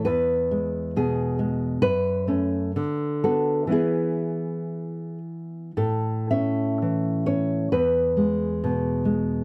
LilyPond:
\new Staff \with { instrumentName = "Nylon-string guitar" } { \time 2/4 \key e \mixolydian \tempo 4 = 66 << { b'4 gis'8 r8 | b'4. a'8 | gis'4. r8 | a'8 e''4 cis''8 |
b'4. r8 | } \\ { e,8 gis8 b,8 gis8 | fis,8 <a cis'>8 d8 <b fis'>8 | <e b e'>2 | a,8 cis'8 e8 cis'8 |
e,8 gis8 b,8 gis8 | } >> }